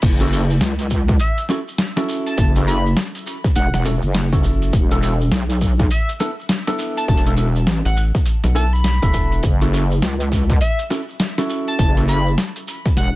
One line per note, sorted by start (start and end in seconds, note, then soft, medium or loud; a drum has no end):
0.02 0.60 F#1 loud
0.02 kick loud
0.02 closed hi-hat medium
0.02 crash loud
0.02 shekere medium
0.20 0.29 C#4 medium
0.20 0.29 E4 medium
0.20 0.29 F#4 medium
0.20 0.29 A4 loud
0.20 closed hi-hat medium
0.20 shekere soft
0.32 0.41 C#4 medium
0.32 0.41 E4 medium
0.32 0.41 F#4 medium
0.32 0.41 A4 medium
0.32 shekere medium
0.50 shekere soft
0.61 1.18 C#2 medium
0.61 snare loud
0.61 closed hi-hat medium
0.61 shekere medium
0.79 closed hi-hat medium
0.79 shekere soft
0.91 kick medium
0.91 shekere medium
1.08 kick loud
1.08 snare soft
1.08 shekere soft
1.20 1.38 E5 medium
1.20 closed hi-hat medium
1.20 shekere medium
1.38 closed hi-hat medium
1.49 1.59 C#4 medium
1.49 1.59 E4 medium
1.49 1.59 F#4 medium
1.49 1.59 A4 medium
1.49 snare soft
1.49 shekere medium
1.68 shekere soft
1.78 snare loud
1.78 closed hi-hat medium
1.78 shekere medium
1.97 2.52 C#4 medium
1.97 2.52 E4 medium
1.97 2.52 F#4 medium
1.97 2.52 A4 loud
1.97 snare medium
1.97 closed hi-hat medium
1.97 shekere soft
2.09 shekere medium
2.26 2.34 A5 loud
2.26 closed hi-hat soft
2.26 shekere soft
2.38 2.95 F#1 medium
2.38 2.50 A5 medium
2.38 kick loud
2.38 closed hi-hat medium
2.38 shekere medium
2.56 2.65 C#4 medium
2.56 2.65 E4 medium
2.56 2.65 F#4 medium
2.56 2.65 A4 loud
2.56 closed hi-hat medium
2.56 shekere soft
2.67 2.76 C#4 medium
2.67 2.76 E4 medium
2.67 2.76 F#4 medium
2.67 2.76 A4 medium
2.67 2.85 B5 loud
2.67 shekere medium
2.86 shekere soft
2.97 snare loud
2.97 closed hi-hat medium
2.97 shekere medium
3.15 closed hi-hat medium
3.15 shekere soft
3.27 shekere loud
3.44 kick loud
3.44 snare soft
3.44 shekere soft
3.55 3.71 E1 loud
3.55 3.67 F#5 medium
3.55 closed hi-hat medium
3.55 shekere medium
3.74 4.00 E1 loud
3.74 3.81 F#5 medium
3.74 snare medium
3.74 closed hi-hat medium
3.85 3.94 C#4 medium
3.85 3.94 E4 medium
3.85 3.94 F#4 medium
3.85 3.94 A4 medium
3.85 shekere loud
4.02 4.42 F#1 medium
4.02 shekere soft
4.14 snare loud
4.14 closed hi-hat medium
4.14 shekere medium
4.33 4.72 C#4 medium
4.33 4.72 E4 medium
4.33 4.72 F#4 medium
4.33 4.72 A4 medium
4.33 kick loud
4.33 closed hi-hat medium
4.33 shekere soft
4.43 4.72 F#1 loud
4.43 shekere loud
4.62 closed hi-hat soft
4.62 shekere soft
4.73 5.30 E1 loud
4.73 kick loud
4.73 closed hi-hat medium
4.73 shekere medium
4.91 5.00 B3 medium
4.91 5.00 D4 medium
4.91 5.00 E4 medium
4.91 5.00 A4 loud
4.91 closed hi-hat medium
4.91 shekere soft
5.02 5.12 B3 medium
5.02 5.12 D4 medium
5.02 5.12 E4 medium
5.02 5.12 A4 medium
5.02 shekere medium
5.21 shekere soft
5.32 5.89 B1 medium
5.32 snare loud
5.32 closed hi-hat medium
5.32 shekere medium
5.50 closed hi-hat medium
5.50 shekere soft
5.61 kick medium
5.61 shekere loud
5.79 kick loud
5.79 snare soft
5.79 shekere soft
5.91 6.08 E5 medium
5.91 closed hi-hat medium
5.91 shekere medium
6.09 closed hi-hat medium
6.20 6.29 B3 medium
6.20 6.29 D4 medium
6.20 6.29 E4 medium
6.20 6.29 A4 medium
6.20 snare soft
6.20 shekere medium
6.39 shekere soft
6.49 snare loud
6.49 closed hi-hat medium
6.49 shekere medium
6.67 7.22 B3 medium
6.67 7.22 D4 medium
6.67 7.22 E4 medium
6.67 7.22 A4 medium
6.67 snare medium
6.67 closed hi-hat medium
6.67 shekere soft
6.79 shekere loud
6.97 7.04 A5 medium
6.97 closed hi-hat soft
6.97 shekere soft
7.08 7.65 E1 loud
7.08 7.20 A5 medium
7.08 kick loud
7.08 shekere medium
7.17 closed hi-hat medium
7.26 7.35 B3 medium
7.26 7.35 D4 medium
7.26 7.35 E4 medium
7.26 7.35 A4 loud
7.26 closed hi-hat medium
7.26 shekere soft
7.37 7.47 B3 medium
7.37 7.47 D4 medium
7.37 7.47 E4 medium
7.37 7.47 A4 medium
7.37 shekere medium
7.56 shekere soft
7.67 7.82 A1 medium
7.67 snare loud
7.67 closed hi-hat medium
7.67 shekere medium
7.85 8.12 A1 loud
7.85 7.96 F#5 medium
7.85 closed hi-hat medium
7.85 shekere soft
7.97 shekere loud
8.15 kick loud
8.15 snare soft
8.15 shekere soft
8.26 closed hi-hat medium
8.26 shekere soft
8.44 9.00 B1 medium
8.44 snare soft
8.44 closed hi-hat medium
8.55 8.64 B3 medium
8.55 8.64 D4 medium
8.55 8.64 E4 medium
8.55 8.64 A4 medium
8.55 8.70 A5 loud
8.55 shekere medium
8.73 9.32 B5 medium
8.73 shekere soft
8.84 snare loud
8.84 closed hi-hat medium
8.84 shekere medium
9.02 9.42 E1 loud
9.02 9.42 B3 medium
9.02 9.42 D4 medium
9.02 9.42 E4 medium
9.02 9.42 A4 medium
9.02 kick loud
9.02 closed hi-hat medium
9.02 shekere soft
9.14 kick medium
9.14 shekere loud
9.32 closed hi-hat soft
9.32 shekere soft
9.43 10.01 F#1 loud
9.43 kick loud
9.43 closed hi-hat medium
9.43 shekere soft
9.61 9.70 C#4 medium
9.61 9.70 E4 medium
9.61 9.70 F#4 medium
9.61 9.70 A4 loud
9.61 closed hi-hat medium
9.61 shekere soft
9.72 9.82 C#4 medium
9.72 9.82 E4 medium
9.72 9.82 F#4 medium
9.72 9.82 A4 medium
9.72 shekere medium
9.91 shekere soft
10.02 10.59 C#2 medium
10.02 snare loud
10.02 closed hi-hat medium
10.02 shekere soft
10.20 closed hi-hat medium
10.20 shekere soft
10.32 kick medium
10.32 shekere loud
10.50 kick loud
10.50 snare soft
10.50 shekere soft
10.61 10.79 E5 medium
10.61 closed hi-hat medium
10.61 shekere soft
10.79 closed hi-hat medium
10.90 11.00 C#4 medium
10.90 11.00 E4 medium
10.90 11.00 F#4 medium
10.90 11.00 A4 medium
10.90 snare soft
10.90 shekere loud
11.09 shekere soft
11.20 snare loud
11.20 closed hi-hat medium
11.20 shekere medium
11.38 11.93 C#4 medium
11.38 11.93 E4 medium
11.38 11.93 F#4 medium
11.38 11.93 A4 medium
11.38 snare medium
11.38 closed hi-hat medium
11.38 shekere soft
11.50 shekere medium
11.68 11.75 A5 medium
11.68 closed hi-hat soft
11.68 shekere soft
11.79 12.36 F#1 loud
11.79 11.91 A5 medium
11.79 kick loud
11.79 closed hi-hat medium
11.79 shekere soft
11.97 12.06 C#4 medium
11.97 12.06 E4 medium
11.97 12.06 F#4 medium
11.97 12.06 A4 loud
11.97 closed hi-hat medium
11.97 shekere soft
12.08 12.17 C#4 medium
12.08 12.17 E4 medium
12.08 12.17 F#4 medium
12.08 12.17 A4 medium
12.08 12.26 B5 loud
12.08 shekere medium
12.26 shekere soft
12.38 snare loud
12.38 closed hi-hat medium
12.38 shekere medium
12.56 closed hi-hat medium
12.56 shekere soft
12.68 shekere medium
12.86 kick loud
12.86 snare soft
12.86 shekere soft
12.96 13.12 E1 medium
12.96 13.09 F#5 medium
12.96 closed hi-hat medium
12.96 shekere soft